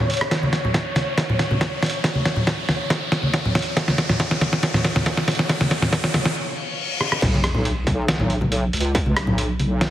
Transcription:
Already playing: C#5, riser
0.10 closed hi-hat, open hi-hat
0.17 closed hi-hat
0.21 cross-stick
0.31 kick, snare, closed hi-hat
0.43 high conga
0.53 snare, closed hi-hat
0.65 low conga
0.74 kick, snare, closed hi-hat
0.96 snare, closed hi-hat, high conga
1.18 kick, snare, closed hi-hat
1.29 low conga
1.39 snare, closed hi-hat
1.51 high conga, low conga
1.61 kick, snare, closed hi-hat
1.82 snare, closed hi-hat, open hi-hat
1.90 closed hi-hat
1.94 closed hi-hat
2.04 kick, snare, closed hi-hat
2.15 high conga
2.25 snare, closed hi-hat
2.36 low conga
2.47 kick, snare, closed hi-hat
2.69 snare, open hi-hat, high conga
2.90 kick, snare, closed hi-hat
3.12 snare, closed hi-hat
3.23 high conga
3.33 kick, snare, closed hi-hat
3.45 low conga
3.55 snare, closed hi-hat, open hi-hat
3.62 closed hi-hat
3.66 closed hi-hat
3.77 kick, snare, closed hi-hat
3.88 snare, high conga
3.98 snare, closed hi-hat
4.09 snare, low conga
4.20 kick, snare, closed hi-hat
4.31 snare
4.41 snare, closed hi-hat, high conga
4.53 snare
4.63 kick, snare, closed hi-hat
4.74 snare, low conga
4.84 snare, closed hi-hat
4.96 snare, high conga, low conga
5.06 kick, snare, closed hi-hat
5.17 snare
5.28 snare, closed hi-hat, open hi-hat
5.35 closed hi-hat
5.39 snare, closed hi-hat
5.49 kick, snare, closed hi-hat
5.61 snare, high conga
5.71 snare, closed hi-hat
5.82 snare, low conga
5.93 kick, snare, closed hi-hat
6.04 snare
6.14 snare, open hi-hat, high conga
6.26 snare
6.36 reverse cymbal
7.01 cross-stick
7.12 cross-stick
7.22 B1, kick, closed hi-hat, crash, sub drop
7.34 high conga
7.44 cross-stick, closed hi-hat
7.55 low conga
7.65 closed hi-hat
7.87 B1, kick, closed hi-hat, high conga
8.08 snare, closed hi-hat
8.20 low conga
8.30 closed hi-hat
8.41 high conga, low conga
8.52 closed hi-hat
8.73 C#2, closed hi-hat, open hi-hat
8.80 closed hi-hat
8.85 closed hi-hat
8.95 kick, closed hi-hat
9.06 high conga
9.16 B1, cross-stick, closed hi-hat
9.27 low conga
9.38 closed hi-hat
9.60 closed hi-hat, high conga
9.81 snare, closed hi-hat

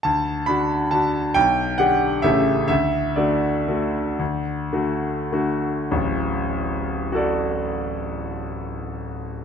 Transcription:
0.03 D2 A5
0.46 D3 D4 F#4 B5
0.91 D3 D4 F#4 A5
1.34 B1 G5
1.78 D3 D4 G4 F#5
2.22 A1 C#3 A3 G4 E5
2.68 D2 E5
3.16 D3 A3 F#4 D5
3.68 D3 A3 F#4
4.19 D2
4.73 D3 A3 F#4
5.32 D3 A3 F#4
5.91 D1 A1
7.12 F#4 A4 D5

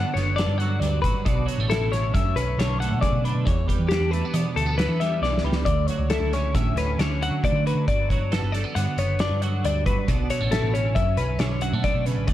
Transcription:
Already playing: D3 F#3 B3 A4 F#5
0.14 F#1 B3 C#5, snare, closed hi-hat
0.36 D3 D5, snare, closed hi-hat
0.47 G2
0.58 F#3 F#5, closed hi-hat
0.80 D2 G2 D5, closed hi-hat
1.02 A1 F#3 B4, kick, closed hi-hat
1.25 B1 B2 D5, kick, closed hi-hat
1.46 F#3 C#5, closed hi-hat
1.58 A1 A3
1.70 E4 A4, snare, closed hi-hat
1.80 A1
1.91 C#4 C#5, snare, closed hi-hat
2.13 F#2 E5, kick, snare, closed hi-hat
2.36 B1 C#4 B4, closed hi-hat
2.58 B1 D3 C#5, snare, closed hi-hat
2.80 A3 F#5, closed hi-hat
2.91 B2
3.01 C#3 D5, kick, closed hi-hat
3.12 B2
3.24 D3 B4, closed hi-hat
3.35 B2
3.45 E2 C#5, kick, closed hi-hat
3.67 G3 B4, kick, closed hi-hat
3.79 E2
3.89 D4 G4, snare, closed hi-hat
4.00 E2
4.11 A3 B4, closed hi-hat
4.25 B3
4.34 B2 E3 D5, closed hi-hat
4.56 D2 A3 A4, closed hi-hat
4.66 B3
4.78 E3 B4, snare, closed hi-hat
4.88 E3
5.00 G3 E5, snare, closed hi-hat
5.21 B1 E2 D5, snare
5.38 snare
5.43 C#2 G3 B4
5.52 snare
5.65 D2 D5, kick, closed hi-hat
5.87 F#3 C#5, closed hi-hat
5.99 C#2
6.10 E4 A4, snare, closed hi-hat
6.21 C#2
6.33 C#4 C#5, snare, closed hi-hat
6.54 A1 A2 E5, kick, snare, closed hi-hat
6.74 D2 C#4 B4, snare, closed hi-hat
6.98 D2 D3 C#5, snare, closed hi-hat
7.22 F#3 F#5, closed hi-hat
7.31 D3
7.43 D2 D5, kick, closed hi-hat
7.52 D3
7.66 F#3 B4, closed hi-hat
7.75 D3
7.88 G1 D5, kick, closed hi-hat
8.09 F#3 C#5, kick, closed hi-hat
8.18 G1
8.32 A4 B4, snare, closed hi-hat
8.43 G1
8.52 A3 D5, snare, closed hi-hat
8.64 B3
8.75 G2 D3 F#5, closed hi-hat
8.97 F#1 B3 C#5, closed hi-hat
9.19 D3 D5, snare, closed hi-hat
9.31 G2
9.42 F#3 F#5, closed hi-hat
9.64 D2 G2 D5, closed hi-hat
9.86 G1 F#3 B4, kick, closed hi-hat
10.08 B1 B2 D5, kick, closed hi-hat
10.30 F#3 C#5, closed hi-hat
10.40 A1 A3
10.51 E4 A4, snare, closed hi-hat
10.63 A1
10.74 C#4 C#5, closed hi-hat
10.95 F#2 E5, kick, closed hi-hat
11.17 B1 C#4 B4, closed hi-hat
11.39 B1 D3 C#5, snare, closed hi-hat
11.61 F#3 F#5, closed hi-hat
11.73 B2 A3
11.84 B2 D5, kick, closed hi-hat
11.94 B2
12.05 C#3 B4, closed hi-hat
12.16 A1
12.27 D2 D5, kick, closed hi-hat

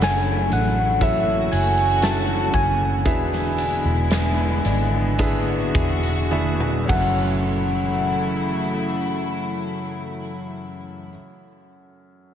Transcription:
Already playing: F#1 F#2 C#3 F#3 A3 C#4 E4 F#4 A4 C#5 E5
0.01 A3 G#5, snare, closed hi-hat
0.52 A1 C#4 F#5, closed hi-hat
1.01 E3 C#4 E4 F#4 A4 E5, kick, closed hi-hat
1.52 F#1 F#4 G#5, closed hi-hat
1.78 closed hi-hat
2.02 A3 C#4 E4 F#4 A4 E5 A5, snare, closed hi-hat
2.53 F#1 C#4 G#5, kick, closed hi-hat
3.05 E1 B2 D3 E3 G#3 B3 D4 E4 G#4 B4 E5, kick, closed hi-hat
3.33 snare
3.58 D4, closed hi-hat
3.85 E1
4.11 B3, snare, closed hi-hat
4.65 G#1 D4, closed hi-hat
5.19 B3 D4 E4 F#4 G#4 B4 E5, kick, closed hi-hat
5.75 E1 G#4, kick, closed hi-hat
6.03 closed hi-hat
6.31 B3 D4 E4 G#4 B4 E5, high tom
6.60 mid tom
6.84 F#2 C#4
6.88 F#1 F#2 C#3 F#3 A3 E4 F#4 A4 F#5, kick, crash
6.92 E3 A3 E5
6.98 C#4 F#4

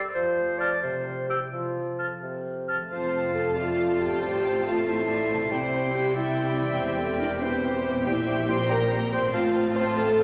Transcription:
Already playing: G2 G3 G4 C5 E5
0.14 F2 F3 C5
0.37 A3
0.59 F4 C5 D5 A5 F6
0.82 C3 C5
1.06 G3
1.29 E4 G4 C5 G5 E6
1.52 F3 F4
1.75 F4
1.99 A4 A5 F6
2.21 C3 C6
2.45 F5
2.68 A4 A5 F6
2.73 F3
2.78 A3
2.82 F4
2.87 C5
2.91 F1 F2 F3 C4 F4 C5 F5 A5
3.34 A4 A5
3.55 A3 F4 D5 F5 A5
3.99 A2 G4 G5
4.08 C4
4.17 C5
4.21 A1 A2 G3 C5 A5
4.44 F3
4.64 A3 F4 F5
4.85 E4 C5 E5
5.08 D5
5.29 C3 C5
5.36 C4
5.46 C5
5.50 C2 C3 G3 C4 E4 C5 G5
5.93 G4 G5
6.14 G3 E4 D5 E5 G5
6.56 E4 E5
6.60 E3
6.65 C4
6.69 G4
6.74 C5
6.78 E1 E2 G4 C5 E5 G5
6.98 A4
7.19 D4 A#4 D5
7.40 E3 C4 C5 E5 G5
7.88 A#2
7.92 C4
7.97 G4
8.01 E4 C5
8.06 A#1 A#2 G3 C4 C5 E5 G5
8.27 G3 C5 G5
8.47 G3 C5 G5 C6
8.68 G3 A#4 C5 G5 A#5
8.89 G3 C5 G5
9.11 G3 C5 G5 C6
9.16 A2
9.25 F4
9.33 A1 A2 C4 F4 C5 F5 A5
9.54 C4 C5 F5 A5
9.75 C4 C5 F5 A5 C6
9.97 C4 A4 C5 F5 A5
10.19 C4 C5 F5 A5

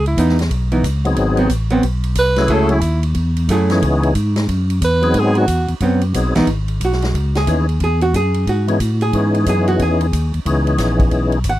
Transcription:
Already playing: C#2
0.06 E4, ride
0.17 E2 E3 B3 D#4, kick, hi-hat pedal, ride
0.29 snare
0.39 snare, ride
0.50 B1, kick, ride
0.72 E3 B3 D#4, ride
0.84 C#2, kick, hi-hat pedal, ride
1.05 F#3 B3 C4 D#4 G#4, ride
1.16 G#1, kick, ride
1.37 F#3 B3 C4, ride
1.49 A1, kick, hi-hat pedal, ride
1.70 F#3 B3 C4, ride
1.82 B1, kick, ride
2.04 ride
2.15 C2 B4, kick, hi-hat pedal, ride
2.36 F#3 A3 C#4 E4 G#4, snare, ride
2.48 C#2 F#3 A3 E4 G#4, kick, ride
2.53 A4
2.69 E4, ride
2.81 D#2, kick, hi-hat pedal, ride
3.03 ride
3.15 E2, kick, ride
3.36 ride
3.48 F#2 F#3 A3 E4 G#4, kick, hi-hat pedal, ride
3.70 E3 B3 C#4 D#4 G#4, snare, ride
3.82 C#2, kick, ride
4.03 ride
4.15 G#2, kick, hi-hat pedal, ride
4.36 snare, ride
4.48 F#2, kick, ride
4.70 ride
4.81 E2 B4, kick, hi-hat pedal, ride
5.02 F#3 B3 C4 D#4 G#4, ride
5.14 G#2, kick, ride
5.19 G#4
5.35 F#4, ride
5.47 E2, kick, hi-hat pedal, ride
5.68 E2, ride
5.80 F#2 F#3 B3 C4, kick, ride
6.01 ride
6.14 B1 F#3 B3 C4 D#4 G#4, kick, hi-hat pedal, ride
6.35 B1 E3 B3 D#4, snare, ride
6.47 G#1, kick, ride
6.68 ride
6.80 B1, kick, hi-hat pedal, ride
6.85 F#4
6.92 snare
7.02 snare, ride
7.14 C#2, kick, ride
7.35 G#4, snare, ride
7.47 D#2 E3 B3 C#4 D#4 G#4, kick, hi-hat pedal, ride
7.69 ride
7.80 E2 G#4, kick, ride
8.01 F#4, ride
8.14 F#2 G#4, kick, hi-hat pedal, ride
8.34 ride
8.47 G#2 F#4, kick, ride
8.68 E3 B3 C#4 D#4 G#4, ride
8.80 A2, kick, hi-hat pedal, ride
9.01 G#4, ride
9.13 G#2 E3 B3 C#4 D#4 G#4, kick, ride
9.34 ride
9.46 F#2 G#4, kick, hi-hat pedal, ride
9.67 F#4, ride
9.79 E2 G#4, kick, ride
10.01 ride
10.13 D#2, kick, hi-hat pedal, ride
10.34 D#2, ride
10.45 C#2 E3 B3 C#4 D#4 G#4, kick, ride
10.67 ride
10.78 A#1, kick, snare, hi-hat pedal, ride
10.99 kick, ride
11.11 B1, kick, ride
11.32 ride
11.44 G#1, kick, hi-hat pedal, ride
11.49 F#5

